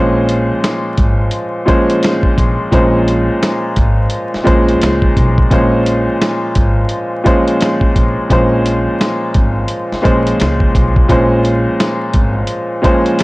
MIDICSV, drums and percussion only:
0, 0, Header, 1, 2, 480
1, 0, Start_track
1, 0, Key_signature, -5, "minor"
1, 0, Tempo, 697674
1, 1874, Time_signature, 4, 2, 24, 8
1, 9105, End_track
2, 0, Start_track
2, 0, Title_t, "Drums"
2, 198, Note_on_c, 9, 42, 86
2, 267, Note_off_c, 9, 42, 0
2, 440, Note_on_c, 9, 42, 91
2, 441, Note_on_c, 9, 38, 111
2, 442, Note_on_c, 9, 40, 89
2, 508, Note_off_c, 9, 42, 0
2, 509, Note_off_c, 9, 38, 0
2, 511, Note_off_c, 9, 40, 0
2, 671, Note_on_c, 9, 42, 83
2, 674, Note_on_c, 9, 36, 98
2, 740, Note_off_c, 9, 42, 0
2, 743, Note_off_c, 9, 36, 0
2, 901, Note_on_c, 9, 42, 85
2, 970, Note_off_c, 9, 42, 0
2, 1156, Note_on_c, 9, 36, 94
2, 1157, Note_on_c, 9, 42, 76
2, 1225, Note_off_c, 9, 36, 0
2, 1226, Note_off_c, 9, 42, 0
2, 1305, Note_on_c, 9, 42, 58
2, 1374, Note_off_c, 9, 42, 0
2, 1395, Note_on_c, 9, 42, 88
2, 1406, Note_on_c, 9, 38, 107
2, 1407, Note_on_c, 9, 40, 83
2, 1464, Note_off_c, 9, 42, 0
2, 1475, Note_off_c, 9, 38, 0
2, 1476, Note_off_c, 9, 40, 0
2, 1535, Note_on_c, 9, 36, 74
2, 1604, Note_off_c, 9, 36, 0
2, 1636, Note_on_c, 9, 36, 82
2, 1639, Note_on_c, 9, 42, 74
2, 1705, Note_off_c, 9, 36, 0
2, 1708, Note_off_c, 9, 42, 0
2, 1873, Note_on_c, 9, 36, 102
2, 1875, Note_on_c, 9, 42, 90
2, 1942, Note_off_c, 9, 36, 0
2, 1944, Note_off_c, 9, 42, 0
2, 2118, Note_on_c, 9, 42, 83
2, 2186, Note_off_c, 9, 42, 0
2, 2357, Note_on_c, 9, 42, 94
2, 2358, Note_on_c, 9, 38, 111
2, 2359, Note_on_c, 9, 40, 91
2, 2426, Note_off_c, 9, 42, 0
2, 2427, Note_off_c, 9, 38, 0
2, 2428, Note_off_c, 9, 40, 0
2, 2589, Note_on_c, 9, 42, 86
2, 2593, Note_on_c, 9, 36, 100
2, 2658, Note_off_c, 9, 42, 0
2, 2662, Note_off_c, 9, 36, 0
2, 2819, Note_on_c, 9, 42, 85
2, 2888, Note_off_c, 9, 42, 0
2, 2988, Note_on_c, 9, 38, 34
2, 3057, Note_off_c, 9, 38, 0
2, 3075, Note_on_c, 9, 36, 95
2, 3075, Note_on_c, 9, 42, 74
2, 3143, Note_off_c, 9, 36, 0
2, 3143, Note_off_c, 9, 42, 0
2, 3223, Note_on_c, 9, 42, 56
2, 3292, Note_off_c, 9, 42, 0
2, 3313, Note_on_c, 9, 42, 91
2, 3324, Note_on_c, 9, 38, 108
2, 3325, Note_on_c, 9, 40, 90
2, 3381, Note_off_c, 9, 42, 0
2, 3393, Note_off_c, 9, 38, 0
2, 3394, Note_off_c, 9, 40, 0
2, 3454, Note_on_c, 9, 36, 78
2, 3522, Note_off_c, 9, 36, 0
2, 3554, Note_on_c, 9, 36, 84
2, 3556, Note_on_c, 9, 42, 77
2, 3623, Note_off_c, 9, 36, 0
2, 3625, Note_off_c, 9, 42, 0
2, 3701, Note_on_c, 9, 36, 98
2, 3770, Note_off_c, 9, 36, 0
2, 3792, Note_on_c, 9, 36, 104
2, 3793, Note_on_c, 9, 42, 93
2, 3860, Note_off_c, 9, 36, 0
2, 3861, Note_off_c, 9, 42, 0
2, 4034, Note_on_c, 9, 42, 83
2, 4103, Note_off_c, 9, 42, 0
2, 4276, Note_on_c, 9, 42, 94
2, 4277, Note_on_c, 9, 38, 112
2, 4278, Note_on_c, 9, 40, 87
2, 4345, Note_off_c, 9, 42, 0
2, 4346, Note_off_c, 9, 38, 0
2, 4347, Note_off_c, 9, 40, 0
2, 4508, Note_on_c, 9, 42, 81
2, 4512, Note_on_c, 9, 36, 98
2, 4577, Note_off_c, 9, 42, 0
2, 4581, Note_off_c, 9, 36, 0
2, 4740, Note_on_c, 9, 42, 83
2, 4809, Note_off_c, 9, 42, 0
2, 4995, Note_on_c, 9, 36, 95
2, 4995, Note_on_c, 9, 42, 76
2, 5063, Note_off_c, 9, 36, 0
2, 5063, Note_off_c, 9, 42, 0
2, 5144, Note_on_c, 9, 42, 58
2, 5213, Note_off_c, 9, 42, 0
2, 5233, Note_on_c, 9, 42, 91
2, 5244, Note_on_c, 9, 38, 110
2, 5246, Note_on_c, 9, 40, 86
2, 5302, Note_off_c, 9, 42, 0
2, 5313, Note_off_c, 9, 38, 0
2, 5314, Note_off_c, 9, 40, 0
2, 5374, Note_on_c, 9, 36, 78
2, 5443, Note_off_c, 9, 36, 0
2, 5475, Note_on_c, 9, 36, 84
2, 5476, Note_on_c, 9, 42, 78
2, 5544, Note_off_c, 9, 36, 0
2, 5545, Note_off_c, 9, 42, 0
2, 5713, Note_on_c, 9, 36, 103
2, 5714, Note_on_c, 9, 42, 91
2, 5781, Note_off_c, 9, 36, 0
2, 5783, Note_off_c, 9, 42, 0
2, 5956, Note_on_c, 9, 42, 84
2, 6025, Note_off_c, 9, 42, 0
2, 6198, Note_on_c, 9, 38, 114
2, 6198, Note_on_c, 9, 42, 95
2, 6200, Note_on_c, 9, 40, 92
2, 6266, Note_off_c, 9, 42, 0
2, 6267, Note_off_c, 9, 38, 0
2, 6268, Note_off_c, 9, 40, 0
2, 6429, Note_on_c, 9, 42, 81
2, 6433, Note_on_c, 9, 36, 97
2, 6497, Note_off_c, 9, 42, 0
2, 6501, Note_off_c, 9, 36, 0
2, 6661, Note_on_c, 9, 42, 88
2, 6729, Note_off_c, 9, 42, 0
2, 6828, Note_on_c, 9, 38, 34
2, 6897, Note_off_c, 9, 38, 0
2, 6915, Note_on_c, 9, 36, 92
2, 6915, Note_on_c, 9, 42, 73
2, 6984, Note_off_c, 9, 36, 0
2, 6984, Note_off_c, 9, 42, 0
2, 7064, Note_on_c, 9, 42, 59
2, 7133, Note_off_c, 9, 42, 0
2, 7153, Note_on_c, 9, 42, 94
2, 7165, Note_on_c, 9, 38, 109
2, 7166, Note_on_c, 9, 40, 88
2, 7222, Note_off_c, 9, 42, 0
2, 7233, Note_off_c, 9, 38, 0
2, 7235, Note_off_c, 9, 40, 0
2, 7294, Note_on_c, 9, 36, 73
2, 7363, Note_off_c, 9, 36, 0
2, 7395, Note_on_c, 9, 36, 83
2, 7398, Note_on_c, 9, 42, 75
2, 7464, Note_off_c, 9, 36, 0
2, 7467, Note_off_c, 9, 42, 0
2, 7542, Note_on_c, 9, 36, 95
2, 7611, Note_off_c, 9, 36, 0
2, 7633, Note_on_c, 9, 36, 102
2, 7634, Note_on_c, 9, 42, 94
2, 7701, Note_off_c, 9, 36, 0
2, 7703, Note_off_c, 9, 42, 0
2, 7876, Note_on_c, 9, 42, 83
2, 7945, Note_off_c, 9, 42, 0
2, 8119, Note_on_c, 9, 42, 93
2, 8120, Note_on_c, 9, 38, 113
2, 8121, Note_on_c, 9, 40, 91
2, 8187, Note_off_c, 9, 42, 0
2, 8188, Note_off_c, 9, 38, 0
2, 8189, Note_off_c, 9, 40, 0
2, 8349, Note_on_c, 9, 42, 82
2, 8353, Note_on_c, 9, 36, 96
2, 8418, Note_off_c, 9, 42, 0
2, 8422, Note_off_c, 9, 36, 0
2, 8580, Note_on_c, 9, 42, 88
2, 8649, Note_off_c, 9, 42, 0
2, 8835, Note_on_c, 9, 36, 97
2, 8837, Note_on_c, 9, 42, 75
2, 8904, Note_off_c, 9, 36, 0
2, 8906, Note_off_c, 9, 42, 0
2, 8985, Note_on_c, 9, 42, 57
2, 9053, Note_off_c, 9, 42, 0
2, 9073, Note_on_c, 9, 42, 93
2, 9105, Note_off_c, 9, 42, 0
2, 9105, End_track
0, 0, End_of_file